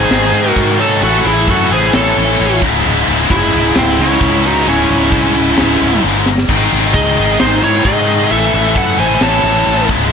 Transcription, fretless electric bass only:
0.10 0.32 G#1 medium
0.32 0.55 G#2 loud
0.56 1.01 G#2 medium
1.01 1.24 A1 loud
1.25 1.47 A1 medium
1.48 1.70 F#2 medium
1.71 1.93 A1 medium
1.94 2.16 A1 loud
2.17 2.39 A1 loud
2.40 2.61 A1 medium
2.62 2.84 C#1 loud
2.86 3.08 C#1 medium
3.08 3.30 C#1 loud
3.31 3.53 F#1 loud
3.54 3.76 C#1 medium
3.76 3.98 C#1 loud
3.99 4.21 C#2 loud
4.21 4.66 C#2 loud
4.68 4.89 C#1 loud
4.90 5.11 C#1 loud
5.12 5.34 C2 loud
5.36 5.58 C#1 medium
5.59 5.81 C#1 loud
5.81 6.03 C#1 medium
6.04 6.48 G1 loud
6.48 6.71 G#1 loud
6.72 6.94 G#1 loud
6.94 7.16 C#2 medium
7.18 7.40 G#1 medium
7.41 7.63 G#1 loud
7.63 7.84 G#2 medium
7.85 8.29 G#2 loud
8.31 8.53 A1 medium
8.54 8.75 A1 loud
8.76 8.98 F#2 medium
8.99 9.21 A1 medium
9.21 9.43 A1 loud
9.44 9.66 A1 loud
9.67 9.88 A1 loud
9.89 10.11 C#1 loud

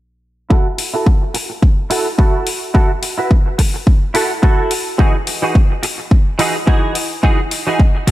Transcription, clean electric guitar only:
0.50 0.66 E4 medium
0.50 0.66 F#4 medium
0.50 0.67 A4 loud
0.78 muted clean electric guitar stroke soft
0.93 1.06 E4 medium
0.93 1.07 F#4 medium
0.93 1.07 A4 medium
1.22 muted clean electric guitar stroke soft
1.34 muted clean electric guitar stroke medium
1.50 muted clean electric guitar stroke soft
1.90 2.06 E4 loud
1.90 2.06 F#4 medium
1.90 2.07 A4 loud
2.18 2.46 E4 medium
2.18 2.47 F#4 medium
2.18 2.47 A4 medium
2.74 2.90 E4 loud
2.74 2.90 F#4 medium
2.74 2.91 A4 loud
3.02 muted clean electric guitar stroke soft
3.18 3.31 E4 medium
3.18 3.31 F#4 medium
3.18 3.31 B4 medium
3.46 muted clean electric guitar stroke soft
3.58 muted clean electric guitar stroke medium
3.74 muted clean electric guitar stroke soft
4.14 4.30 E4 loud
4.14 4.31 F#4 medium
4.14 4.31 A4 loud
4.42 4.71 E4 medium
4.42 4.71 F#4 medium
4.42 4.72 A4 medium
4.98 5.14 E3 loud
4.98 5.15 D#4 medium
4.98 5.15 F#4 medium
4.98 5.15 G#4 loud
5.27 muted clean electric guitar stroke soft
5.42 5.55 E3 medium
5.42 5.55 D#4 medium
5.42 5.56 F#4 medium
5.42 5.56 G#4 medium
5.70 muted clean electric guitar stroke soft
5.83 muted clean electric guitar stroke medium
5.98 muted clean electric guitar stroke soft
6.39 6.55 E3 loud
6.39 6.55 D#4 medium
6.39 6.55 F#4 medium
6.39 6.56 G#4 loud
6.67 6.95 E3 medium
6.67 6.95 D#4 medium
6.67 6.96 F#4 medium
6.67 6.96 G#4 medium
7.23 7.39 E3 loud
7.23 7.39 D#4 medium
7.23 7.39 F#4 medium
7.23 7.40 G#4 loud
7.51 muted clean electric guitar stroke soft
7.67 7.79 E3 medium
7.67 7.80 D#4 medium
7.67 7.80 F#4 medium
7.67 7.80 G#4 medium
7.95 muted clean electric guitar stroke soft
8.07 muted clean electric guitar stroke medium

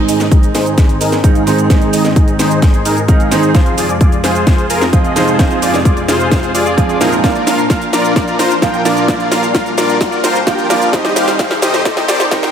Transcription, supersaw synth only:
0.08 0.23 D#4 medium
0.08 0.23 G#4 medium
0.08 0.23 D#5 medium
0.31 0.46 D#4 medium
0.31 0.46 G#4 medium
0.31 0.46 D#5 loud
0.55 0.74 D#4 medium
0.55 0.74 G#4 medium
0.55 0.74 C5 loud
0.78 0.97 D#4 medium
0.78 0.97 G#4 medium
0.78 0.97 C5 loud
1.01 1.16 D#4 loud
1.01 1.16 G#4 medium
1.01 1.16 A#4 loud
1.24 1.43 D#4 medium
1.24 1.43 G#4 medium
1.24 1.43 F5 loud
1.47 1.67 D#4 medium
1.47 1.67 G#4 medium
1.47 1.67 C5 medium
1.70 1.90 D#4 medium
1.70 1.90 G#4 medium
1.70 1.90 C5 loud
1.93 2.08 D#4 medium
1.93 2.08 G#4 medium
1.93 2.08 D#5 medium
2.16 2.31 D#4 medium
2.16 2.31 G#4 medium
2.16 2.31 D#5 loud
2.39 2.59 D#4 medium
2.39 2.59 G#4 medium
2.39 2.59 C5 loud
2.62 2.82 D#4 medium
2.62 2.82 G#4 medium
2.62 2.82 C5 loud
2.85 3.00 D#4 loud
2.85 3.00 G#4 medium
2.85 3.00 A#4 loud
3.08 3.28 D#4 medium
3.08 3.28 G#4 medium
3.08 3.28 F5 medium
3.31 3.51 D#4 medium
3.31 3.51 G#4 medium
3.31 3.51 C5 medium
3.55 3.74 F4 medium
3.55 3.74 G#4 medium
3.55 3.74 C5 loud
3.78 3.93 F4 medium
3.78 3.93 G#4 medium
3.78 3.93 D5 medium
4.01 4.16 F4 medium
4.01 4.16 G#4 medium
4.01 4.16 D5 loud
4.24 4.43 F4 medium
4.24 4.43 G#4 medium
4.24 4.43 C5 loud
4.47 4.66 F4 medium
4.47 4.66 G#4 medium
4.47 4.66 C5 loud
4.70 4.85 F4 loud
4.70 4.85 G#4 medium
4.70 4.85 A#4 loud
4.93 5.13 F4 medium
4.93 5.13 G#4 medium
4.93 5.13 D#5 loud
5.16 5.36 F4 medium
5.16 5.36 G#4 medium
5.16 5.36 C5 medium
5.39 5.59 F4 medium
5.39 5.59 G#4 medium
5.39 5.59 C5 loud
5.62 5.77 F4 medium
5.62 5.77 G#4 medium
5.62 5.77 D5 medium
5.85 6.00 F4 medium
5.85 6.00 G#4 medium
5.85 6.00 D5 loud
6.08 6.28 F4 medium
6.08 6.28 G#4 medium
6.08 6.28 C5 loud
6.31 6.51 F4 medium
6.31 6.51 G#4 medium
6.31 6.51 C5 loud
6.54 6.74 F4 medium
6.54 6.74 G#4 medium
6.54 6.74 D5 loud
6.78 6.97 F4 loud
6.78 6.97 G#4 medium
6.78 6.97 D5 loud
7.01 7.16 F4 medium
7.01 7.16 G#4 medium
7.01 7.16 A#4 medium
7.24 7.43 F4 medium
7.24 7.43 A#4 medium
7.24 7.43 D5 loud
7.47 7.62 F4 medium
7.47 7.62 A#4 medium
7.47 7.62 F5 medium
7.70 7.85 F4 medium
7.70 7.85 A#4 medium
7.70 7.85 F5 loud
7.93 8.13 F4 medium
7.93 8.13 A#4 medium
7.93 8.13 D5 loud
8.16 8.36 F4 medium
8.16 8.36 A#4 medium
8.16 8.36 D5 loud
8.39 8.54 F4 loud
8.39 8.54 A#4 medium
8.39 8.54 C5 loud
8.62 8.82 F4 medium
8.62 8.82 A#4 medium
8.62 8.82 G5 loud
8.85 9.05 F4 medium
8.85 9.05 A#4 medium
8.85 9.05 D5 medium
9.08 9.28 F4 medium
9.08 9.28 A#4 medium
9.08 9.28 D5 loud
9.31 9.46 F4 medium
9.31 9.46 A#4 medium
9.31 9.46 F5 medium
9.54 9.69 F4 medium
9.54 9.69 A#4 medium
9.54 9.70 F5 loud
9.77 9.97 F4 medium
9.77 9.97 A#4 medium
9.77 9.97 D5 loud
10.01 10.20 F4 medium
10.01 10.20 A#4 medium
10.01 10.20 D5 loud
10.24 10.39 F4 loud
10.24 10.39 A#4 medium
10.24 10.39 C5 loud
10.47 10.66 F4 medium
10.47 10.66 A#4 medium
10.47 10.66 G5 medium
10.70 10.90 F4 medium
10.70 10.90 A#4 medium
10.70 10.90 D5 medium
10.93 11.13 G4 medium
10.93 11.13 C5 medium
10.93 11.13 D#5 loud
11.16 11.31 G4 medium
11.16 11.31 C5 medium
11.16 11.31 F5 medium
11.39 11.54 G4 medium
11.39 11.54 C5 medium
11.39 11.54 F5 loud
11.62 11.82 G4 medium
11.62 11.82 C5 medium
11.62 11.82 D#5 loud
11.85 12.05 G4 medium
11.85 12.05 C5 medium
11.85 12.05 D#5 loud
12.08 12.23 G4 loud
12.08 12.23 C5 medium
12.08 12.23 D5 loud
12.32 12.51 G4 medium
12.32 12.51 C5 medium
12.32 12.51 G5 loud

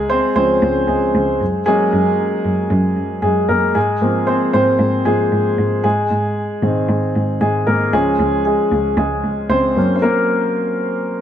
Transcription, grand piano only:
0.00 0.37 G#3 medium
0.00 0.11 G#4 medium
0.10 0.35 C4 medium
0.10 0.34 C5 medium
0.36 1.11 F3 soft
0.36 0.88 G#3 soft
0.36 0.86 C4 medium
0.36 1.11 C#4 medium
0.36 0.90 C5 medium
0.87 1.63 G#3 medium
0.87 1.64 G#4 medium
1.66 2.03 F#3 medium
1.66 3.20 G#3 medium
1.66 2.03 A#3 soft
1.66 2.03 C#4 soft
1.66 3.21 G#4 medium
3.22 3.48 G#3 medium
3.22 3.47 G#4 medium
3.49 3.74 A#3 medium
3.49 3.76 A#4 medium
3.75 4.25 G#3 medium
3.75 4.29 G#4 medium
4.02 4.38 F3 soft
4.02 4.38 A#3 soft
4.02 4.27 C4 soft
4.27 4.53 C4 medium
4.27 4.52 C5 medium
4.53 5.03 C4 medium
4.53 5.08 C5 medium
5.05 5.30 F3 soft
5.05 5.81 G#3 soft
5.05 5.30 A#3 soft
5.05 5.30 C4 soft
5.05 5.80 G#4 medium
5.84 6.61 G#3 medium
5.84 7.39 G#4 medium
6.62 6.98 D#3 soft
6.62 6.99 G#3 soft
6.62 6.99 C4 medium
7.41 7.66 G#3 medium
7.41 7.68 G#4 medium
7.67 7.74 A#3 medium
7.67 7.73 A#4 medium
7.93 9.72 F3 soft
7.93 8.43 G#3 medium
7.93 9.73 C#4 medium
7.93 8.44 G#4 medium
8.45 8.95 G#3 medium
8.45 8.94 G#4 medium
8.97 9.47 G#3 medium
8.97 9.51 G#4 medium
9.50 9.94 C4 medium
9.50 9.94 C5 medium
9.76 10.51 F#3 soft
9.76 10.02 A#3 soft
9.76 10.51 C#4 medium
9.96 10.02 C5 medium
10.02 11.21 A#3 medium
10.02 11.21 A#4 medium

